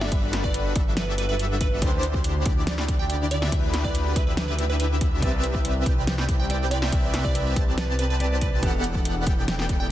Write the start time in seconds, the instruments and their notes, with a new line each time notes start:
0.01 synth pluck E5, snare
0.12 detuned saw bass G1, analog polysynth G3 D4 F#4 B4, digital synth lead B4, synth pluck E5, kick, closed hi-hat
0.33 snare, closed hi-hat
0.44 synth pluck D5, kick
0.54 closed hi-hat
0.75 detuned saw bass G1, analog polysynth G3 D4 F#4 A4 E5, digital synth lead E5, kick, closed hi-hat
0.97 synth pluck B4, snare, closed hi-hat
1.18 synth pluck B4, closed hi-hat
1.29 synth pluck B4
1.39 closed hi-hat
1.61 synth pluck B4, kick, closed hi-hat
1.82 detuned saw bass D2, analog polysynth D3 D4 E4 G4 C5, digital synth lead C5, kick, closed hi-hat
2.03 closed hi-hat
2.14 kick
2.24 closed hi-hat
2.46 detuned saw bass D2, analog polysynth D3 D4 E4 G4 D5, digital synth lead D5, kick, closed hi-hat
2.67 snare, closed hi-hat
2.78 snare
2.88 kick, closed hi-hat
2.99 synth pluck G5
3.10 synth pluck G5, closed hi-hat
3.31 synth pluck D5, closed hi-hat
3.42 synth pluck E5, snare
3.52 detuned saw bass D2, analog polysynth D3 D4 E4 G4 B4, digital synth lead B4, synth pluck E5, kick, closed hi-hat
3.74 snare, closed hi-hat
3.84 synth pluck D5, kick
3.95 closed hi-hat
4.16 detuned saw bass D2, analog polysynth D3 E4 E5, synth pluck B4, digital synth lead E5, kick, closed hi-hat
4.27 synth pluck B4
4.37 synth pluck B4, snare, closed hi-hat
4.48 synth pluck B4
4.59 closed hi-hat
4.70 synth pluck B4
4.80 synth pluck B4, closed hi-hat
5.01 kick, closed hi-hat
5.20 detuned saw bass C2, clean electric guitar C3 E4 B4 D5, analog polysynth C4 G4 B4 D5 E5, digital synth lead E5, kick, closed hi-hat
5.44 closed hi-hat
5.55 kick
5.65 closed hi-hat
5.86 detuned saw bass C2, analog polysynth C4 G4 B4, digital synth lead G5, kick, closed hi-hat
6.07 snare, closed hi-hat
6.18 snare
6.29 kick, closed hi-hat
6.40 synth pluck G5
6.49 clean electric guitar C3 E4 B4 D5, synth pluck G5, closed hi-hat
6.71 synth pluck D5, closed hi-hat
6.82 synth pluck E5, snare
6.90 detuned saw bass C2, clean electric guitar C3 E4 B4 D5, analog polysynth C4 G4 E5, digital synth lead E5, synth pluck E5, kick, closed hi-hat
7.14 snare, closed hi-hat
7.25 synth pluck D5, kick
7.35 closed hi-hat
7.56 detuned saw bass C2, analog polysynth C4 G4 B4 D5 A5, digital synth lead A5, kick, closed hi-hat
7.78 synth pluck B4, snare, closed hi-hat
7.99 synth pluck B4, closed hi-hat
8.10 synth pluck B4
8.19 clean electric guitar C3 E4 B4 D5, closed hi-hat
8.41 synth pluck B4, kick, closed hi-hat
8.61 detuned saw bass E1, clean electric guitar E3 D4 G4, analog polysynth E3 B3 G4 A4 D5 F#5, digital synth lead F#5, kick, closed hi-hat
8.65 clean electric guitar A4
8.84 closed hi-hat
8.95 kick
9.05 closed hi-hat
9.27 detuned saw bass E1, analog polysynth E3 B3 G4 A4 D5 G5, digital synth lead G5, kick, closed hi-hat
9.48 snare, closed hi-hat
9.59 snare
9.69 kick, closed hi-hat
9.80 synth pluck G5